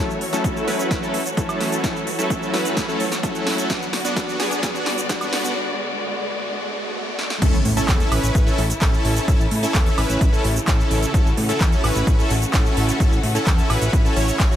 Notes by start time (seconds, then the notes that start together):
Already playing: E3 A3 F#4 C#5, riser
0.10 shaker
0.21 open hi-hat
0.33 F#3 A3 C#4 E4 A4, snare, closed hi-hat, shaker
0.44 kick, closed hi-hat, shaker
0.57 shaker
0.68 F#3 A3 C#4 E4 B4, snare, open hi-hat
0.79 closed hi-hat, shaker
0.91 kick, snare, closed hi-hat, shaker
1.02 F#3 A3 C#4 E4 A4, shaker
1.14 open hi-hat
1.26 closed hi-hat, shaker
1.37 F#3 A3 C#4 E4 A4, kick, closed hi-hat, shaker
1.49 closed hi-hat, high woodblock, shaker
1.61 snare, open hi-hat
1.72 closed hi-hat, shaker
1.84 F#3 A3 C#4 E4 A4, kick, snare, closed hi-hat, shaker
1.96 shaker
2.07 open hi-hat
2.19 F#3 A3 C#4 E4 A4, closed hi-hat, shaker
2.30 kick, closed hi-hat, shaker
2.43 shaker
2.53 F#3 A3 C#4 E4 B4, snare, open hi-hat
2.65 closed hi-hat, shaker
2.77 kick, snare, closed hi-hat, shaker
2.88 F#3 A3 C#4 E4 A4, shaker
3.00 open hi-hat
3.12 snare, closed hi-hat, shaker
3.23 F#3 A3 C#4 E4 A4, kick, closed hi-hat, shaker
3.35 closed hi-hat, shaker
3.47 snare, open hi-hat
3.58 closed hi-hat, shaker
3.70 D3 B3 D4 F#4 D5, kick, snare, closed hi-hat, shaker
3.82 shaker
3.93 snare, open hi-hat
4.05 B3 D4 F#4, closed hi-hat, shaker
4.16 kick, snare, closed hi-hat, shaker
4.29 shaker
4.40 B3 D4 G#4, snare, open hi-hat
4.51 closed hi-hat, shaker
4.63 kick, snare, closed hi-hat, shaker
4.74 B3 D4 F#4, shaker
4.86 snare, open hi-hat
4.98 closed hi-hat, shaker
5.09 B3 D4 F#4, kick, snare, closed hi-hat, shaker
5.21 closed hi-hat, high woodblock, shaker
5.33 snare, open hi-hat
5.44 closed hi-hat, shaker
7.19 snare
7.30 snare
7.42 A1 C#3 E3 A3 C#4 E4 A4, kick, closed hi-hat, crash, impact, shaker
7.54 A1, shaker
7.65 A2, open hi-hat
7.77 C#4 E4 A4, closed hi-hat, shaker
7.88 E2, kick, clap, closed hi-hat, shaker
8.00 closed hi-hat, shaker
8.12 A1 C#4 E4 B4, open hi-hat, high woodblock
8.23 A1, closed hi-hat, shaker
8.35 A1, kick, closed hi-hat, shaker
8.47 C#4 E4 A4, shaker
8.58 A1, open hi-hat
8.70 closed hi-hat, shaker
8.81 A1 C#4 E4 A4, kick, clap, closed hi-hat, shaker
8.94 shaker
9.05 A1, open hi-hat
9.16 closed hi-hat, shaker
9.28 A1 C#4 E4 A4, kick, closed hi-hat, shaker
9.40 A1, shaker
9.51 A2, open hi-hat
9.63 C#4 E4 A4, closed hi-hat, shaker
9.74 E2, kick, clap, closed hi-hat, shaker
9.86 closed hi-hat, shaker
9.98 A1 C#4 E4 B4, open hi-hat, high woodblock
10.10 A1, closed hi-hat, shaker
10.21 A1, kick, closed hi-hat, shaker
10.33 C#4 E4 A4, shaker
10.44 A1, open hi-hat
10.56 closed hi-hat, shaker
10.68 A1 C#4 E4 A4, kick, clap, closed hi-hat, shaker
10.80 shaker
10.91 A1, open hi-hat
11.03 closed hi-hat, shaker
11.14 A1 C#4 E4 F#4 A4, kick, closed hi-hat, shaker
11.26 A1, shaker
11.37 A2, open hi-hat
11.49 C#4 E4 A4, closed hi-hat, shaker
11.61 E2, kick, clap, closed hi-hat, shaker
11.72 closed hi-hat, shaker
11.84 A1 C#4 E4 B4, open hi-hat, high woodblock
11.96 A1, closed hi-hat, shaker
12.07 A1, kick, closed hi-hat, shaker
12.19 C#4 E4 A4, shaker
12.30 A1, open hi-hat
12.42 closed hi-hat, shaker
12.54 A1 C#4 E4 A4, kick, clap, closed hi-hat, shaker
12.66 shaker
12.77 A1, open hi-hat
12.89 closed hi-hat, shaker
13.00 A1 C#4 E4 A4, kick, closed hi-hat, shaker
13.12 A1, shaker
13.23 A2, open hi-hat
13.35 C#4 E4 A4, closed hi-hat, shaker
13.47 E2, kick, clap, closed hi-hat, shaker
13.58 closed hi-hat, shaker
13.70 A1 C#4 E4 B4, open hi-hat, high woodblock
13.82 A1, closed hi-hat, shaker
13.93 A1, kick, closed hi-hat, shaker
14.05 C#4 E4 A4, shaker
14.16 A1 C#4 E4 C#5, open hi-hat
14.28 closed hi-hat, shaker
14.40 A1, kick, clap, closed hi-hat, shaker
14.51 C#4 E4 F#4, shaker